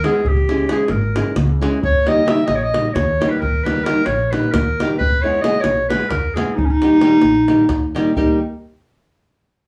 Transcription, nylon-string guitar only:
0.04 0.20 E3 medium
0.04 0.20 G#3 medium
0.04 0.20 B3 medium
0.04 0.21 E4 medium
0.04 0.21 G#4 medium
0.49 0.64 E3 medium
0.49 0.64 G#3 medium
0.49 0.65 C#4 medium
0.49 0.65 E4 medium
0.49 0.65 G#4 medium
0.70 0.85 E3 medium
0.70 0.85 G#3 medium
0.70 0.85 C#4 medium
0.70 0.85 E4 medium
0.70 0.86 G#4 loud
1.15 1.31 E3 medium
1.15 1.31 G#3 medium
1.15 1.31 C#4 medium
1.15 1.31 E4 soft
1.15 1.32 G#4 medium
1.61 1.78 E3 loud
1.61 1.78 G#3 medium
1.61 1.78 C#4 medium
1.61 1.78 E4 medium
1.61 1.78 G#4 medium
2.06 2.22 D#3 medium
2.06 2.22 G3 medium
2.06 2.22 A#3 medium
2.06 2.22 D#4 medium
2.06 2.22 G4 medium
2.26 2.42 D#3 medium
2.26 2.42 G3 medium
2.26 2.42 A#3 medium
2.26 2.42 D#4 medium
2.26 2.42 G4 medium
2.73 2.89 D#3 medium
2.73 2.89 G3 medium
2.73 2.89 A#3 medium
2.73 2.90 D#4 medium
2.73 2.90 G4 medium
3.20 3.37 D#3 medium
3.20 3.36 G3 medium
3.20 3.37 A#3 medium
3.20 3.37 D#4 medium
3.20 3.37 G4 medium
3.65 3.80 D#3 medium
3.65 3.81 G3 medium
3.65 3.81 A#3 medium
3.65 3.81 D#4 medium
3.65 3.81 G4 medium
3.85 4.00 D#3 medium
3.85 4.01 G3 medium
3.85 4.01 A#3 medium
3.85 4.01 D#4 medium
3.85 4.01 G4 medium
4.32 4.47 D#3 medium
4.32 4.47 G3 soft
4.32 4.48 A#3 medium
4.32 4.48 D#4 medium
4.32 4.48 G4 medium
4.80 4.95 D#3 medium
4.80 4.95 G3 medium
4.80 4.96 A#3 medium
4.80 4.96 D#4 medium
4.80 4.96 G4 medium
5.23 5.39 E3 medium
5.23 5.39 G#3 medium
5.23 5.39 B3 medium
5.23 5.39 E4 medium
5.23 5.40 G#4 medium
5.44 5.59 E3 medium
5.44 5.59 G#3 medium
5.44 5.59 B3 medium
5.44 5.59 E4 medium
5.44 5.59 G#4 medium
5.90 6.05 E3 medium
5.90 6.06 G#3 medium
5.90 6.06 B3 medium
5.90 6.06 E4 medium
5.90 6.06 G#4 medium
6.36 6.52 E3 medium
6.36 6.52 G#3 medium
6.36 6.53 B3 medium
6.36 6.53 E4 medium
6.36 6.53 G#4 medium
6.82 6.97 D#3 medium
6.82 6.97 G3 medium
6.82 6.97 A#3 medium
6.82 6.97 D#4 medium
6.82 6.98 G4 medium
7.02 7.17 D#3 medium
7.02 7.17 G3 medium
7.02 7.17 A#3 medium
7.02 7.17 D#4 medium
7.02 7.17 G4 medium
7.48 7.63 D#3 medium
7.48 7.63 G3 medium
7.48 7.64 A#3 medium
7.48 7.64 D#4 medium
7.48 7.64 G4 medium
7.95 8.10 D#3 medium
7.95 8.11 G3 medium
7.95 8.11 A#3 medium
7.95 8.11 D#4 medium
7.95 8.11 G4 loud
8.17 8.39 G3 medium
8.17 8.39 A#3 medium
8.17 8.39 D#4 medium
8.17 8.38 G4 loud

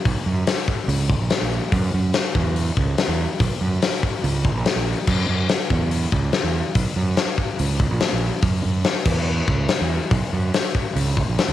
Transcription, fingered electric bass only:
0.05 0.14 B1 loud
0.26 0.43 F#2 medium
0.88 1.14 C#2 loud
1.20 1.29 A#1 medium
1.41 1.59 A#1 medium
1.72 1.90 F#2 loud
1.94 2.11 F#2 loud
2.35 2.70 E2 loud
2.77 2.94 C#2 medium
3.08 3.25 E2 medium
3.40 3.49 B1 loud
3.61 3.78 F#2 medium
4.24 4.50 C#2 loud
4.55 4.64 A#1 medium
4.76 4.93 A#1 medium
5.07 5.25 F#2 loud
5.29 5.46 F#2 medium
5.70 6.05 E2 medium
6.12 6.30 C#2 medium
6.43 6.61 E2 medium
6.75 6.84 B1 medium
6.96 7.14 F#2 medium
7.60 7.86 C#2 loud
7.91 8.00 A#1 medium
8.12 8.30 A#1 medium
8.42 8.60 F#2 loud
8.65 8.82 F#2 medium
9.05 9.41 E2 medium
9.48 9.66 C#2 medium
9.81 9.98 E2 medium
10.11 10.20 B1 loud
10.33 10.50 F#2 medium
10.96 11.22 C#2 loud
11.28 11.36 A#1 medium
11.48 11.53 C#2 medium

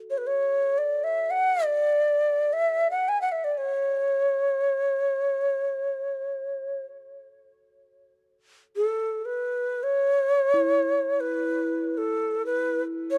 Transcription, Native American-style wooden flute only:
0.10 0.19 C#5 medium
0.18 0.28 B4 medium
0.27 0.80 C#5 medium
0.78 1.05 D5 medium
1.04 1.32 E5 medium
1.30 1.65 F#5 medium
1.64 2.54 D5 medium
2.53 2.90 E5 medium
2.91 3.10 F#5 medium
3.08 3.21 G#5 medium
3.21 3.29 F#5 medium
3.29 3.46 E5 medium
3.29 3.33 F#5 soft
3.44 3.59 D5 medium
3.57 6.82 C#5 medium
8.76 9.27 A4 medium
9.25 9.85 B4 medium
9.83 11.22 C#5 medium
11.20 11.99 B4 medium
11.97 12.45 A4 medium
12.46 12.82 B4 medium
13.11 13.18 C#5 medium

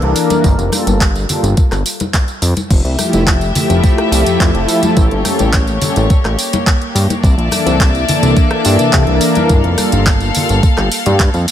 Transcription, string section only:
2.70 4.95 A3 medium
2.70 7.19 G4 medium
2.70 4.95 E5 medium
4.98 11.51 A#3 medium
4.98 7.22 C#5 medium
7.23 9.48 D5 medium
7.23 9.48 E5 medium
7.23 9.48 A5 medium
9.51 11.51 A4 medium
9.51 11.51 F5 medium

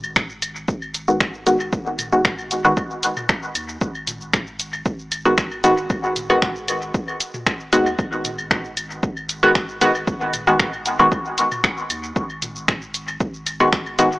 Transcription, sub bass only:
0.00 0.65 G#1 loud
0.68 1.69 G#1 medium
1.73 2.74 G#1 loud
3.55 3.77 D#2 medium
3.81 4.82 G#1 loud
4.86 5.87 G#1 medium
5.90 6.91 G#1 loud
7.73 7.94 D#2 medium
7.99 9.00 G#1 loud
9.03 10.04 G#1 medium
10.07 11.08 G#1 loud
11.90 12.12 D#2 medium
12.16 13.17 G#1 loud
13.20 14.19 G#1 loud

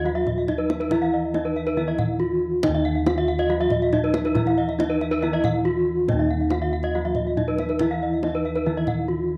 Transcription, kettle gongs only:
0.00 1.76 D#2 medium
0.00 0.44 D#4 medium
0.48 0.56 E4 soft
0.91 1.33 E4 medium
1.34 1.42 E4 medium
1.77 3.02 D#3 medium
2.20 2.28 E4 medium
2.63 3.89 D#4 medium
2.68 5.20 D#2 medium
3.06 3.14 E4 soft
3.92 4.00 E4 soft
4.36 4.77 E4 medium
4.79 4.86 E4 soft
5.22 6.47 D#3 medium
5.65 5.73 E4 soft
6.08 7.33 D#4 medium
6.13 8.65 D#2 medium
6.51 6.59 E4 soft
7.37 7.45 E4 medium
7.80 8.22 E4 medium
8.24 8.31 E4 medium
8.67 9.37 D#3 medium
9.10 9.18 E4 soft

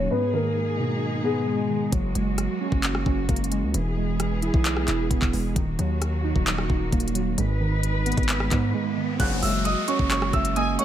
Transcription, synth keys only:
0.00 0.12 D#3 medium
0.00 0.12 F#3 medium
0.00 0.11 A#3 medium
0.00 0.12 D#4 medium
0.11 1.24 G#2 medium
0.33 1.47 D#3 medium
0.79 1.92 B2 medium
1.24 1.92 B3 medium
1.47 1.92 G#3 medium
1.70 1.92 D#3 medium
1.93 3.06 F#3 medium
2.15 3.29 G#3 medium
2.61 3.05 C#4 medium
3.06 3.74 C#4 medium
3.29 3.74 A#3 medium
3.52 3.74 G#3 medium
3.74 4.88 E3 medium
3.97 5.11 G#3 medium
4.42 4.87 E4 medium
4.88 5.56 E4 medium
5.10 5.56 B3 medium
5.34 5.56 G#3 medium
5.56 6.70 D#3 medium
5.79 6.93 F#3 medium
6.24 6.69 D#4 medium
6.70 7.38 D#4 medium
6.92 7.38 A#3 medium
7.15 7.38 F#3 medium
7.38 8.52 G#2 loud
7.61 8.74 D#3 medium
8.06 8.50 B3 medium
8.51 9.20 B3 medium
8.74 9.20 G#3 medium
8.97 9.20 D#3 medium
9.20 10.33 F#3 medium
9.43 10.56 G#3 medium
9.88 10.32 C#4 medium
10.33 10.85 C#4 medium
10.56 10.85 A#3 medium
10.79 10.85 G#3 medium

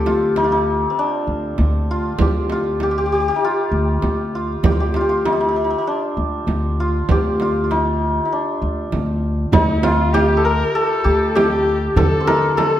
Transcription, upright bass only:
0.00 0.84 D2 medium
1.27 1.55 D2 medium
1.58 2.13 D2 medium
2.19 3.28 D2 medium
3.71 3.99 D2 medium
4.02 4.57 D2 medium
4.63 5.73 D2 medium
6.17 6.44 D2 medium
6.47 7.02 D2 medium
7.09 8.18 D2 medium
8.62 8.89 D2 medium
8.92 9.47 D2 medium
9.52 10.61 D2 medium
11.05 11.87 D2 medium
11.96 12.80 D3 medium

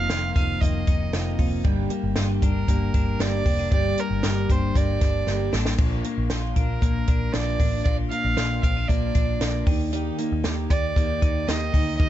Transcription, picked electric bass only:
0.10 0.31 F1 medium
0.36 0.57 F1 medium
0.62 0.83 F1 loud
0.88 1.09 F1 medium
1.13 1.34 F1 medium
1.39 1.60 F1 medium
1.65 1.86 G1 loud
2.04 2.14 G1 loud
2.17 2.38 G1 medium
2.42 2.64 G1 medium
2.68 2.90 G1 medium
2.94 3.16 G1 medium
3.19 3.41 G1 medium
3.46 3.67 F1 medium
3.72 3.93 G1 medium
4.11 4.21 G1 medium
4.24 4.45 G1 medium
4.50 4.71 G1 medium
4.76 4.97 G1 loud
5.02 5.23 G1 medium
5.27 5.48 G1 medium
5.53 5.74 A1 medium
5.79 6.00 A#1 medium
6.18 6.28 A#1 medium
6.56 6.78 A#1 medium
6.82 7.03 A#1 medium
7.08 7.29 A#1 loud
7.34 7.56 A#1 medium
7.60 7.81 A1 medium
7.86 8.07 A#1 loud
8.25 8.35 A#1 medium
8.38 8.59 A#1 medium
8.63 8.85 A#1 medium
8.89 9.11 A#1 medium
9.15 9.37 A#1 loud
9.41 9.62 A#1 medium
9.67 10.09 D#2 medium
10.32 10.43 D#2 medium
10.70 10.92 D#2 medium
10.96 11.18 D#2 medium
11.22 11.44 D#2 medium
11.48 11.69 D#2 medium
11.74 11.95 D2 medium
12.00 12.09 D#2 medium

